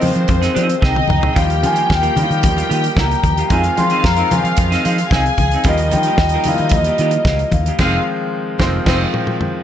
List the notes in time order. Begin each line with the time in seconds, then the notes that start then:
Already playing: G#3 C4 F4 C5
0.00 D#3 F3 G#3 C4 F4, muted clean electric guitar stroke, open hi-hat, low conga
0.16 F3, muted clean electric guitar stroke, closed hi-hat
0.28 F2, muted clean electric guitar stroke, kick, closed hi-hat, muted conga, high conga
0.41 C4 D#4 G#4, snare, closed hi-hat
0.54 F3 C4 D#4 G#4, closed hi-hat, high conga
0.68 muted clean electric guitar stroke, closed hi-hat
0.81 C2 C4 D#4 G#4 D#5 G5, kick, snare
0.94 muted clean electric guitar stroke, high tom
1.07 C#2, muted clean electric guitar stroke, mid tom, high conga, low conga
1.21 C4 D#4 G#4, floor tom
1.34 D#2 D#3 F3 G3 A#3 F4 G4 F5 G5, kick, closed hi-hat
1.46 muted clean electric guitar stroke, closed hi-hat
1.61 D#3 F3 G3 A#3, muted clean electric guitar stroke, closed hi-hat, high conga
1.65 F4 G#5
1.74 A#3 F4 G4, closed hi-hat
1.88 D#2, muted clean electric guitar stroke, kick, snare, muted conga
1.93 G5
2.02 A#3 F4 A#4, closed hi-hat
2.16 D#3 F3 G3 A#3 D#4, muted clean electric guitar stroke, closed hi-hat, low conga
2.21 F4 F5
2.29 D#3, muted clean electric guitar stroke, closed hi-hat
2.43 D#2, muted clean electric guitar stroke, kick, closed hi-hat, high conga
2.57 A#3 F4 G4, closed hi-hat
2.69 D#3 A#3 F4 G4, closed hi-hat
2.83 muted clean electric guitar stroke, closed hi-hat
2.97 C#2 A#3 F4 G4 A#5, kick, snare
3.11 muted clean electric guitar stroke, closed hi-hat
3.23 D#2, muted clean electric guitar stroke, kick, closed hi-hat, high conga, low conga
3.37 A#3 F4 G4, closed hi-hat
3.50 F2 D#3 F3 G#3 C4 D#4 F4 G#4 F5 G#5, kick, closed hi-hat, muted conga
3.64 muted clean electric guitar stroke, closed hi-hat
3.76 D#3 F3 G#3 C4 F4 C6, muted clean electric guitar stroke, closed hi-hat, high conga
3.90 C4 D#4 G#4, closed hi-hat
4.04 F2 A#5, kick, snare
4.16 C4 D#4 A#4, closed hi-hat
4.30 D#3 F3 G#3 C4 F4, muted clean electric guitar stroke, closed hi-hat, muted conga, low conga
4.44 F3, muted clean electric guitar stroke, closed hi-hat
4.57 F2, muted clean electric guitar stroke, kick, closed hi-hat, high conga
4.70 C4 D#4 G#4, snare, closed hi-hat
4.84 F3 C4 D#4 G#4, closed hi-hat, muted conga
4.98 muted clean electric guitar stroke, closed hi-hat
5.11 C2 C4 D#4 G#4 G#5, kick, snare, muted conga
5.15 F5
5.26 muted clean electric guitar stroke, closed hi-hat
5.38 C#2, muted clean electric guitar stroke, kick, closed hi-hat, high conga, low conga
5.51 C4 D#4 G#4, closed hi-hat
5.64 D#2 D#3 F3 G3 A#3 D#4 F4 D#5, kick, closed hi-hat
5.68 G4 D#5
5.78 muted clean electric guitar stroke, closed hi-hat
5.91 D#3 F3 G3 A#3 F4 G5, muted clean electric guitar stroke, closed hi-hat, muted conga, high conga
6.03 G4, closed hi-hat
6.08 A#3 F4
6.18 D#2, muted clean electric guitar stroke, kick, snare
6.29 closed hi-hat
6.34 A#3 F4 A#4
6.44 D#3 F3 G3 A#3 F5, muted clean electric guitar stroke, closed hi-hat, muted conga, low conga
6.48 E4
6.54 F4, closed hi-hat
6.60 D#3, muted clean electric guitar stroke
6.69 D#2, kick, closed hi-hat, high conga
6.74 D#5, muted clean electric guitar stroke
6.84 A#3 F4 G4, closed hi-hat
6.98 D#3 A#3 F4 G4, closed hi-hat
7.11 muted clean electric guitar stroke, closed hi-hat
7.25 C#2 A#3 F4 G4, kick, snare, muted conga
7.39 muted clean electric guitar stroke, closed hi-hat
7.51 D#2 F5, muted clean electric guitar stroke, kick, closed hi-hat, muted conga, high conga, low conga
7.66 A#3 F4 G4, closed hi-hat
7.78 F1 D#3 F3 G#3 C4 D#4 F4 G#4 F5, kick, snare, crash
8.59 F1 D#3 F3 G#3 C4 D#4 F4 C5, kick, snare
8.86 F1 D#3 F3 G#3 C4 D#4 F4 G#4 C5, kick, snare, crash
9.14 mid tom
9.27 mid tom
9.41 mid tom